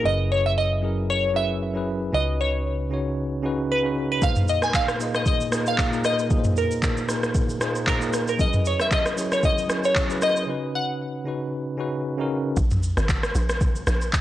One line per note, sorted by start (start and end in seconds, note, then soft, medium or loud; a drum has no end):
0.03 2.09 F#1 medium
0.03 0.67 F#3 medium
0.03 0.68 C#4 medium
0.03 0.68 E4 medium
0.03 0.69 G#4 medium
0.03 0.69 B4 medium
0.03 0.32 D#5 loud
0.32 0.45 C#5 loud
0.46 0.51 E5 loud
0.58 1.06 D#5 loud
0.81 1.25 F#3 medium
0.81 1.25 C#4 medium
0.81 1.26 E4 medium
0.81 1.26 G#4 medium
0.81 1.27 A#4 medium
1.10 1.36 C#5 loud
1.33 1.66 F#3 medium
1.33 1.66 C#4 medium
1.33 1.67 E4 medium
1.33 1.67 G#4 medium
1.33 1.68 B4 medium
1.33 2.16 E5 loud
1.74 2.05 F#3 medium
1.74 2.06 C#4 medium
1.74 2.06 E4 medium
1.74 2.07 G#4 medium
1.74 2.07 B4 medium
2.12 4.18 C#2 medium
2.12 2.76 C#3 medium
2.12 2.77 C#4 medium
2.12 2.77 D#4 medium
2.12 2.77 F#4 medium
2.12 2.78 B4 medium
2.12 2.41 D#5 loud
2.41 3.40 C#5 medium
2.90 3.33 C#3 medium
2.90 3.34 C#4 medium
2.90 3.34 D#4 medium
2.90 3.35 F#4 medium
2.90 3.35 C#5 medium
3.42 3.75 C#3 medium
3.42 3.75 C#4 medium
3.42 3.76 D#4 medium
3.42 3.76 F#4 medium
3.42 3.76 B4 medium
3.71 4.10 B4 medium
3.82 4.14 C#3 medium
3.82 4.14 C#4 medium
3.82 4.15 D#4 medium
3.82 4.15 F#4 medium
3.82 4.16 B4 medium
4.12 4.23 B4 medium
4.20 4.85 A#2 medium
4.20 4.85 A#3 medium
4.20 4.86 D#4 medium
4.20 4.86 G#4 medium
4.20 4.87 C5 medium
4.20 4.50 F5 loud
4.20 kick loud
4.20 shaker medium
4.36 mid tom medium
4.36 shaker medium
4.48 4.64 D#5 loud
4.48 shaker medium
4.62 4.74 G#5 loud
4.62 cross-stick medium
4.62 shaker medium
4.74 5.16 F5 loud
4.74 kick loud
4.74 clap medium
4.74 shaker medium
4.88 cross-stick loud
4.88 shaker medium
4.99 5.42 A#2 medium
4.99 5.43 A#3 medium
4.99 5.43 D#4 medium
4.99 5.44 G#4 medium
4.99 5.44 D#5 medium
4.99 shaker medium
5.15 5.26 D#5 medium
5.15 cross-stick medium
5.15 shaker medium
5.26 5.65 D#5 loud
5.26 kick loud
5.26 shaker medium
5.41 shaker medium
5.51 5.83 A#2 medium
5.51 5.84 A#3 medium
5.51 5.84 D#4 medium
5.51 5.85 G#4 medium
5.51 5.85 A#4 medium
5.51 cross-stick loud
5.51 shaker medium
5.67 6.03 F5 loud
5.67 shaker medium
5.78 kick medium
5.78 clap loud
5.78 shaker medium
5.91 6.23 A#2 medium
5.91 6.23 A#3 medium
5.91 6.24 D#4 medium
5.91 6.24 G#4 medium
5.91 6.25 A#4 medium
5.91 shaker soft
6.05 6.54 D#5 loud
6.05 cross-stick medium
6.05 shaker medium
6.19 shaker medium
6.29 6.94 A#2 medium
6.29 6.94 A#3 medium
6.29 6.94 D#4 medium
6.29 6.95 G#4 medium
6.29 6.39 B4 medium
6.29 kick loud
6.29 shaker medium
6.39 6.98 C5 medium
6.44 mid tom medium
6.44 shaker medium
6.57 7.58 A#4 medium
6.57 shaker medium
6.71 shaker medium
6.83 kick medium
6.83 clap loud
6.83 shaker medium
6.97 shaker soft
7.07 7.51 A#2 medium
7.07 7.51 A#3 medium
7.07 7.52 D#4 medium
7.07 7.52 G#4 medium
7.07 7.53 A#4 medium
7.07 cross-stick medium
7.07 shaker medium
7.23 cross-stick medium
7.23 shaker medium
7.35 kick loud
7.35 shaker medium
7.49 shaker medium
7.59 7.92 A#2 medium
7.59 7.93 A#3 medium
7.59 7.93 D#4 medium
7.59 7.93 G#4 medium
7.59 7.94 C5 loud
7.59 cross-stick loud
7.59 shaker medium
7.75 shaker medium
7.87 8.28 A#4 medium
7.87 kick medium
7.87 clap loud
7.87 shaker medium
8.00 8.32 A#2 medium
8.00 8.32 A#3 medium
8.00 8.32 D#4 medium
8.00 8.33 G#4 medium
8.00 8.33 A#4 medium
8.00 shaker soft
8.13 cross-stick medium
8.13 shaker medium
8.28 8.40 A#4 medium
8.28 shaker medium
8.38 9.02 F#3 medium
8.38 9.03 C#4 medium
8.38 9.03 E4 medium
8.38 9.04 G#4 medium
8.38 8.47 A#4 medium
8.38 8.67 D#5 loud
8.38 kick loud
8.38 shaker medium
8.48 9.07 B4 medium
8.53 mid tom medium
8.53 shaker medium
8.65 8.80 C#5 medium
8.65 shaker medium
8.80 8.86 E5 medium
8.80 cross-stick medium
8.80 shaker medium
8.91 9.34 D#5 medium
8.91 kick loud
8.91 clap loud
8.91 shaker medium
9.06 cross-stick medium
9.06 shaker medium
9.16 9.60 F#3 medium
9.16 9.60 C#4 medium
9.16 9.61 E4 medium
9.16 9.61 G#4 medium
9.16 9.61 C#5 medium
9.16 shaker medium
9.32 9.45 C#5 medium
9.32 cross-stick medium
9.32 shaker medium
9.43 9.82 D#5 loud
9.43 kick loud
9.43 shaker medium
9.58 shaker medium
9.68 10.01 F#3 medium
9.68 10.01 C#4 medium
9.68 10.02 E4 medium
9.68 10.02 G#4 medium
9.68 10.03 C#5 medium
9.68 cross-stick loud
9.68 shaker medium
9.84 10.24 C#5 loud
9.84 shaker medium
9.96 kick medium
9.96 clap loud
9.96 shaker medium
10.09 10.40 F#3 medium
10.09 10.41 C#4 medium
10.09 10.41 E4 medium
10.09 10.42 G#4 medium
10.09 10.42 B4 medium
10.09 shaker soft
10.22 10.76 D#5 loud
10.22 cross-stick medium
10.22 shaker loud
10.36 shaker medium
10.46 11.11 C#3 medium
10.46 11.11 C#4 medium
10.46 11.12 D#4 medium
10.46 11.12 F#4 medium
10.46 11.13 B4 medium
10.75 11.75 F#5 loud
11.25 11.68 C#3 medium
11.25 11.69 C#4 medium
11.25 11.69 D#4 medium
11.25 11.70 F#4 medium
11.25 11.70 B4 medium
11.77 12.10 C#3 medium
11.77 12.10 C#4 medium
11.77 12.10 D#4 medium
11.77 12.11 F#4 medium
11.77 12.11 B4 medium
12.17 12.49 C#3 medium
12.17 12.49 C#4 medium
12.17 12.50 D#4 medium
12.17 12.50 F#4 medium
12.17 12.51 A#4 loud
12.57 12.93 A#1 loud
12.57 kick loud
12.57 shaker medium
12.71 mid tom medium
12.71 shaker medium
12.83 shaker medium
12.97 13.31 G#1 loud
12.97 cross-stick medium
12.97 shaker medium
13.09 kick loud
13.09 clap loud
13.09 shaker medium
13.23 cross-stick loud
13.23 shaker medium
13.35 13.83 A#1 medium
13.35 shaker medium
13.49 cross-stick loud
13.49 shaker medium
13.61 kick loud
13.61 shaker medium
13.76 shaker medium
13.87 14.11 A#1 loud
13.87 cross-stick loud
13.87 shaker loud
14.01 shaker medium
14.13 kick medium
14.13 clap loud
14.13 shaker medium